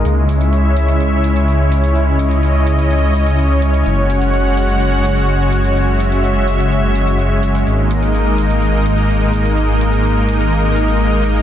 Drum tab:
TB |x-xxx-xxx-xxx-xx|x-xxx-xxx-xxx-xx|x-xxx-xxx-xxx-xx|x-xxx-xxx-xxx-xx|

TB |x-xxx-xxx-xxx-xx|x-xxx-xxx-xxx-xx|